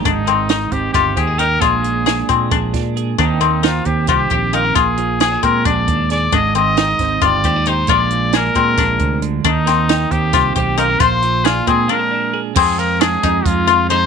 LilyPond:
<<
  \new Staff \with { instrumentName = "Trumpet" } { \time 7/8 \key bes \mixolydian \tempo 4 = 134 ees'4. g'8 g'8 aes'8 bes'8 | aes'2 r4. | ees'4 f'8 g'8 g'4 bes'8 | aes'4 aes'8 bes'8 d''4 d''8 |
ees''8 ees''4. d''4 c''8 | d''4 bes'2 r8 | ees'4. g'4 g'8 bes'8 | c''4 f'8 aes'8 bes'4 r8 |
aes'8 bes'8 aes'4 f'4 c''8 | }
  \new Staff \with { instrumentName = "Koto" } { \time 7/8 \key bes \mixolydian d'8 c'8 ees'4 f'8 g'8 ees'8 | f'4 aes'8 c'8 d'4 r8 | d'8 c'8 ees'4 f'8 g'8 ees'8 | f'4 aes'8 c'8 d'4 r8 |
d'8 c'8 ees'4 f'8 g'8 ees'8 | f'4 aes'8 c'8 d'4 r8 | d'8 c'8 ees'4 f'8 g'8 ees'8 | f'4 aes'8 c'8 d'4 r8 |
c'4 d'8 ees'4 f'8 ees'8 | }
  \new Staff \with { instrumentName = "Clean electric guitar" } { \time 7/8 \key bes \mixolydian << { r4 ees'8 c'8 ees'8 c'16 ees'16 g'8 | <f aes d'>4 d'8 aes8 aes'8 d'8 aes'8 | <bes c' g'>4 c'8 c'8 c'8 c'8 f'16 g'16 | r4 c'16 d'16 aes8 aes'8 d'8 aes'8 |
r4 c'16 ees'16 c'8 g'8 c'16 ees'16 g'8 | <f aes d' aes'>4 d'8 aes2 | r4 g'8 c'8 c'8 c'8 f'16 g'16 | r4 d'8 aes8 f'16 aes'16 d'8 aes'8 |
r4 aes8 ees'8 aes4 aes8 | } \\ { <aes, ees>8 ees2. | bes,8 f2. | ees8 bes2. | bes,8 f2. |
aes,8 ees2. | bes,8 f4. bes,8 c8 d8 | ees8 bes2. | bes,8 f2. |
f,8 f2 f4 | } >> }
  \new Staff \with { instrumentName = "Fingered electric bass" } { \clef bass \time 7/8 \key bes \mixolydian aes,,4. aes,,8 g,,8 ees,4 | bes,,4. bes,8 bes,,8 bes,4 | ees,4. ees,8 c,8 bes,,4 | bes,,4. bes,8 bes,,8 ees,4 |
aes,,4. aes,,8 g,,8 ees,4 | bes,,4. bes,8 bes,,8 d,4 | ees,4. ees,8 c,8 b,,4 | bes,,4. bes,8 r4. |
f,4. f,8 f,4. | }
  \new DrumStaff \with { instrumentName = "Drums" } \drummode { \time 7/8 <hh bd>8 hh8 <hh sn>8 <hh bd>8 <hh bd>8 <hh bd>8 hh8 | <hh bd>8 hh8 <hh sn>8 <hh bd>8 <hh bd>8 <hh bd sn>8 hh8 | <hh bd>8 hh8 <hh sn>8 <hh bd>8 <hh bd>8 <hh bd>8 hh8 | <hh bd>8 hh8 <hh sn>8 <hh bd>8 <hh bd>8 <hh bd>8 <hh sn>8 |
<hh bd>8 hh8 <hh sn>8 <hh bd sn>8 <hh bd>8 <hh bd>8 hh8 | <hh bd>8 hh8 <hh sn>8 <hh bd>8 <hh bd sn>8 <hh bd>8 hh8 | <hh bd>8 <hh sn>8 <hh sn>8 <hh bd>8 <hh bd sn>8 <hh bd>8 hh8 | <hh bd>8 hh8 <hh sn>8 <hh bd>8 r4. |
<cymc bd>8 hh8 <hh sn>8 <hh bd>8 <hh bd>8 hh8 hh8 | }
>>